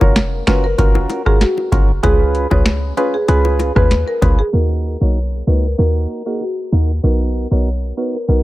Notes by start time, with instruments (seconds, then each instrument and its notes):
0.01 808-style bass F1, synth stab C#4 F4 F#4 A#4, marimba C#5, kick, high bongo
0.16 finger snap, snare, closed hi-hat
0.47 808-style bass F#1, synth stab C#4 F4 F#4 A#4, marimba B4, finger snap, snare, closed hi-hat, high bongo
0.64 marimba A#4
0.78 808-style bass F#1, synth stab C#4 F4 F#4 A#4, marimba A#4, kick, closed hi-hat, high bongo
0.95 high bongo
1.10 closed hi-hat, high bongo
1.26 synth stab C#4 F4 F#4 A#4, marimba G#4, kick, cross-stick
1.41 marimba F#4, snare, closed hi-hat
1.58 high bongo
1.72 808-style bass F#1, synth stab C#4 F4 F#4 A#4, kick, closed hi-hat, low bongo
2.03 808-style bass C#2, synth stab C#4 F4 G#4 B4, marimba G#4, kick, closed hi-hat, high bongo
2.35 closed hi-hat
2.51 808-style bass C#2, synth stab C#4 F4 G#4 B4, marimba C#5, kick, high bongo
2.66 finger snap, snare, closed hi-hat
2.97 synth stab C#4 F4 G#4 B4, marimba B4, closed hi-hat, high bongo
3.14 marimba G#4
3.28 808-style bass C#2, synth stab C#4 F4 G#4 B4, marimba G#4, closed hi-hat, high bongo
3.45 high bongo
3.59 closed hi-hat, high bongo
3.76 808-style bass D#2, synth stab C#4 F4 G#4 B4, marimba B4, kick, cross-stick
3.91 snare, closed hi-hat
4.08 marimba A#4
4.22 808-style bass C#2, synth stab C#4 F4 G#4 B4, kick, closed hi-hat, low bongo
4.39 marimba G#4
4.53 808-style bass D#2, synth stab A#3 D#4 F#4 A#4, marimba A#4
5.01 808-style bass B1, synth stab A#3 D#4 F#4 A#4, marimba C#5
5.47 808-style bass C#2, synth stab A#3 D#4 F#4 A#4, marimba B4
5.64 marimba A#4
5.78 808-style bass D#2, synth stab A#3 D#4 F#4 A#4, marimba A#4
6.26 synth stab A#3 D#4 F#4 A#4, marimba G#4
6.41 marimba F#4
6.72 808-style bass D#2, synth stab A#3 D#4 F#4 A#4
7.03 808-style bass B1, synth stab B3 D#4 F#4 A#4, marimba A#4
7.51 808-style bass B1, synth stab B3 D#4 F#4 A#4, marimba C#5
7.97 synth stab B3 D#4 F#4 A#4, marimba B4
8.14 marimba A#4
8.28 808-style bass B1, synth stab B3 D#4 F#4 A#4, marimba A#4